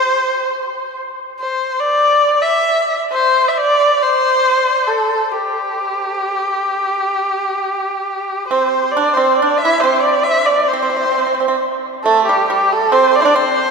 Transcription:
0.00 0.97 C5 medium
1.39 1.82 C5 medium
1.80 2.43 D5 medium
2.41 2.99 E5 medium
3.12 3.49 C5 medium
3.48 3.59 E5 medium
3.58 4.04 D5 loud
4.02 4.88 C5 medium
4.87 5.33 A4 medium
5.32 8.47 G4 medium
8.47 8.93 C4 soft
8.47 8.92 C5 medium
8.91 9.15 D5 medium
8.97 9.17 D4 medium
9.13 9.39 C4 medium
9.13 9.37 C5 medium
9.36 9.59 D5 medium
9.42 9.63 D4 medium
9.58 9.81 E5 medium
9.65 9.83 E4 medium
9.80 10.69 C4 medium
9.80 10.01 C5 medium
10.00 10.24 D5 medium
10.23 10.47 E5 medium
10.46 10.70 D5 medium
10.68 11.60 C5 medium
10.73 10.81 C4 medium
10.82 10.89 C4 soft
10.90 10.95 C4 soft
10.97 11.04 C4 soft
11.06 11.10 C4 soft
11.11 11.17 C4 soft
11.18 11.25 C4 soft
11.27 11.33 C4 soft
11.34 11.39 C4 soft
11.40 11.47 C4 soft
11.48 11.55 C4 soft
12.04 12.27 A3 medium
12.04 12.25 A4 medium
12.26 12.49 G3 medium
12.26 12.47 G4 medium
12.49 12.90 G3 medium
12.49 12.74 G4 medium
12.72 12.94 A4 medium
12.92 13.20 C4 medium
12.92 13.17 C5 medium
13.15 13.22 D5 medium
13.20 13.25 E4 medium
13.20 13.26 C5 medium
13.20 13.35 D5 medium
13.25 13.35 D4 medium
13.34 13.71 C4 medium
13.34 13.71 C5 loud

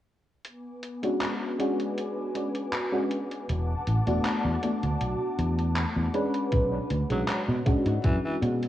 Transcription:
0.45 3.46 B3 medium
0.45 3.46 B4 medium
0.45 3.46 G#5 medium
0.45 3.46 D6 medium
0.45 closed hi-hat medium
0.83 closed hi-hat medium
1.03 1.55 G#3 medium
1.03 1.55 C#4 medium
1.03 1.55 D4 medium
1.03 1.55 F#4 medium
1.03 closed hi-hat medium
1.21 clap loud
1.21 closed hi-hat medium
1.59 2.30 G#3 medium
1.59 2.31 C#4 medium
1.59 2.31 D4 medium
1.59 2.31 F#4 loud
1.59 closed hi-hat medium
1.79 closed hi-hat medium
1.97 closed hi-hat medium
2.34 2.88 G#3 medium
2.34 2.88 C#4 medium
2.34 2.88 D4 medium
2.34 2.89 F#4 medium
2.34 closed hi-hat medium
2.55 closed hi-hat medium
2.73 clap loud
2.73 closed hi-hat medium
2.92 3.07 G#3 medium
2.92 3.07 C#4 medium
2.92 3.08 D4 medium
2.92 3.08 F#4 loud
3.11 closed hi-hat medium
3.31 closed hi-hat medium
3.49 3.73 E1 medium
3.49 6.50 F#5 medium
3.49 6.50 A5 medium
3.49 6.50 D6 medium
3.49 closed hi-hat medium
3.87 3.99 A1 medium
3.87 closed hi-hat medium
4.06 4.18 E1 medium
4.06 4.58 A3 medium
4.06 4.58 B3 medium
4.06 4.59 D4 medium
4.06 4.59 F#4 loud
4.06 closed hi-hat medium
4.25 clap loud
4.25 closed hi-hat medium
4.44 4.56 E2 medium
4.61 6.09 A3 medium
4.61 6.10 B3 medium
4.61 6.10 D4 medium
4.61 6.11 F#4 medium
4.61 closed hi-hat medium
4.83 4.94 D2 medium
4.83 closed hi-hat medium
5.00 5.13 B1 medium
5.00 closed hi-hat medium
5.38 5.84 E2 loud
5.38 closed hi-hat medium
5.59 closed hi-hat medium
5.76 clap loud
5.76 closed hi-hat medium
5.96 6.08 E2 loud
6.14 6.90 G#3 medium
6.14 6.91 C#4 medium
6.14 6.91 D4 medium
6.14 6.91 B4 loud
6.14 closed hi-hat medium
6.34 closed hi-hat medium
6.52 6.77 B1 medium
6.52 kick loud
6.52 closed hi-hat medium
6.90 7.03 D2 medium
6.90 closed hi-hat medium
7.10 7.22 B1 medium
7.10 7.23 F#3 medium
7.10 7.62 G#3 medium
7.10 7.62 C#4 medium
7.10 7.63 D4 medium
7.10 7.63 F#4 medium
7.10 closed hi-hat medium
7.28 7.41 F#3 medium
7.28 clap loud
7.28 closed hi-hat medium
7.48 7.60 B2 medium
7.66 8.38 G#3 loud
7.66 8.38 C#4 medium
7.66 8.38 D4 medium
7.66 8.39 F#4 loud
7.66 kick loud
7.66 closed hi-hat medium
7.86 7.97 G#2 medium
7.86 closed hi-hat medium
8.04 8.17 F#2 medium
8.04 8.17 E3 medium
8.04 kick loud
8.04 closed hi-hat medium
8.25 8.36 E3 medium
8.42 8.68 B2 loud
8.42 8.68 G#3 medium
8.42 8.68 C#4 medium
8.42 8.68 D4 medium
8.42 8.68 F#4 medium
8.42 closed hi-hat medium
8.63 closed hi-hat medium

